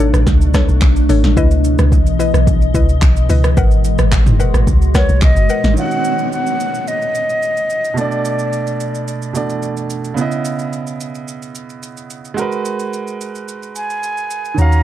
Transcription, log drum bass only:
0.00 0.12 G#1 medium
0.14 0.26 A1 loud
0.27 0.66 C#2 loud
0.69 0.81 B1 medium
0.82 1.08 B1 loud
1.09 1.23 G#1 loud
1.24 1.36 A1 medium
1.37 1.76 C#2 loud
1.79 2.08 C#2 loud
2.06 2.32 B1 medium
2.34 2.72 B1 loud
2.74 3.00 C#2 medium
3.02 3.28 B1 medium
3.30 3.56 C#2 medium
3.57 3.97 G#1 loud
3.99 4.25 G#1 medium
4.27 4.52 F#1 medium
4.54 4.66 G#1 medium
4.67 5.07 C#2 loud
5.09 5.21 B1 medium
5.22 5.36 B1 loud
5.37 5.49 F#1 medium
5.64 5.77 G#1 medium

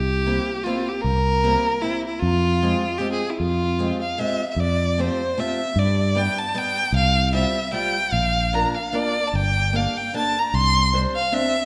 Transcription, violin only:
0.00 0.65 G4 loud
0.63 0.90 F4 medium
0.88 1.02 G4 medium
1.01 1.83 A#4 loud
1.82 2.06 E4 loud
2.07 2.21 E4 medium
2.20 3.00 F4 loud
2.98 3.12 G4 medium
3.12 3.31 G#4 medium
3.29 3.40 E4 medium
3.38 3.99 F4 medium
4.02 4.21 F5 medium
4.19 4.50 E5 medium
4.51 4.61 E5 medium
4.60 5.02 D5 medium
5.00 5.41 C5 medium
5.39 5.81 E5 medium
5.79 6.20 D5 medium
6.18 6.40 G5 loud
6.39 6.59 A5 medium
6.57 6.95 G5 loud
6.96 7.32 F5 loud
7.35 7.71 E5 loud
7.73 8.13 G5 loud
8.12 8.56 F5 loud
8.54 8.77 A#5 medium
8.75 8.96 F5 medium
8.95 9.29 D5 loud
9.27 9.37 A5 medium
9.35 9.77 G5 loud
9.76 9.99 F5 loud
9.97 10.15 G5 loud
10.17 10.40 A5 loud
10.39 10.56 A#5 medium
10.55 10.94 C6 loud
11.15 11.36 F5 medium
11.34 11.65 E5 loud

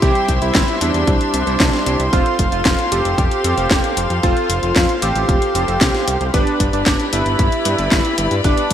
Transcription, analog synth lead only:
0.02 0.36 G4 loud
0.42 0.75 E4 loud
0.81 2.02 D4 loud
2.13 2.46 F4 loud
2.52 2.86 F4 loud
2.92 4.13 G4 loud
4.24 4.57 F4 loud
4.63 4.96 F4 loud
5.02 6.23 G4 loud
6.34 6.67 D4 loud
6.73 7.07 D4 medium
7.13 8.34 E4 loud
8.44 8.73 D4 loud

